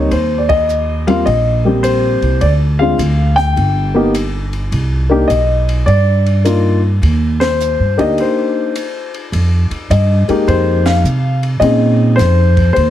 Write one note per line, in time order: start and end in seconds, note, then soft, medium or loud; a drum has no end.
0.00 0.11 C#5 medium
0.11 1.22 D#2 medium
0.11 0.41 C5 medium
0.11 ride medium
0.38 0.48 D5 medium
0.49 1.09 D#5 loud
0.49 kick medium
0.49 ride medium
0.69 hi-hat pedal medium
1.07 1.24 G3 medium
1.07 1.25 A#3 medium
1.07 1.25 C4 medium
1.07 1.25 F4 medium
1.07 1.25 F5 medium
1.07 ride soft
1.26 2.18 A#1 medium
1.26 1.85 D#5 medium
1.26 ride medium
1.65 2.38 G3 medium
1.65 2.38 A#3 medium
1.65 2.38 C4 medium
1.65 2.38 G4 medium
1.83 2.43 C5 medium
1.83 hi-hat pedal medium
1.83 ride medium
2.22 2.40 C2 medium
2.22 ride soft
2.41 2.95 D2 medium
2.41 2.50 D5 medium
2.41 ride medium
2.79 2.97 G#3 medium
2.79 2.98 C4 medium
2.79 2.98 D4 medium
2.79 2.98 F4 medium
2.79 3.33 F5 loud
2.98 3.52 D2 medium
2.98 hi-hat pedal medium
2.98 ride medium
3.36 4.10 G5 loud
3.36 snare soft
3.36 ride soft
3.56 4.68 G1 medium
3.56 ride medium
3.94 4.12 A#3 medium
3.94 4.12 B3 medium
3.94 4.13 D#4 medium
3.94 4.13 G4 medium
4.15 hi-hat pedal soft
4.15 ride medium
4.53 ride soft
4.72 5.25 C2 medium
4.72 ride medium
5.09 5.27 A#3 medium
5.09 5.27 D4 medium
5.09 5.28 D#4 medium
5.09 5.28 G4 medium
5.28 5.83 B1 medium
5.28 5.88 D#5 medium
5.28 hi-hat pedal medium
5.28 ride medium
5.69 ride soft
5.86 6.98 G2 medium
5.86 6.78 D5 loud
5.86 ride medium
6.26 ride soft
6.44 6.79 A#3 medium
6.44 6.79 D4 medium
6.44 6.79 D#4 medium
6.44 6.79 F4 medium
6.44 hi-hat pedal medium
6.44 ride medium
7.02 7.75 D#2 medium
7.02 ride medium
7.40 7.99 C5 loud
7.40 snare medium
7.40 ride medium
7.61 hi-hat pedal medium
7.79 7.97 G2 medium
7.97 8.16 D2 medium
7.97 8.70 A#3 medium
7.97 8.71 D4 medium
7.97 8.71 D#4 medium
7.97 8.71 G4 medium
7.97 8.17 D#5 medium
7.97 ride soft
8.18 9.10 C5 medium
8.18 ride medium
8.76 hi-hat pedal medium
8.76 ride medium
9.14 ride soft
9.32 9.68 F2 medium
9.32 ride medium
9.70 muted upright bass stroke soft
9.70 ride soft
9.90 10.25 G2 medium
9.90 10.49 D#5 medium
9.90 hi-hat pedal medium
9.90 ride medium
10.28 11.01 G#3 medium
10.28 11.01 A#3 medium
10.28 11.01 D#4 medium
10.28 11.02 G4 medium
10.28 muted upright bass stroke soft
10.28 ride soft
10.47 11.03 F2 medium
10.47 10.83 C5 loud
10.47 ride medium
10.86 11.39 F5 medium
10.86 snare medium
10.86 ride medium
11.04 11.59 C3 medium
11.04 hi-hat pedal medium
11.43 ride soft
11.60 12.17 A#2 medium
11.60 12.49 C4 medium
11.60 12.50 C#4 medium
11.60 12.50 D#4 medium
11.60 12.14 D#5 medium
11.60 ride medium
11.64 12.50 G#4 medium
12.16 12.74 F2 loud
12.16 12.71 C5 loud
12.16 snare soft
12.16 hi-hat pedal medium
12.16 ride medium
12.57 kick medium
12.57 ride soft
12.73 12.90 D#2 medium
12.73 12.90 C5 medium
12.73 ride medium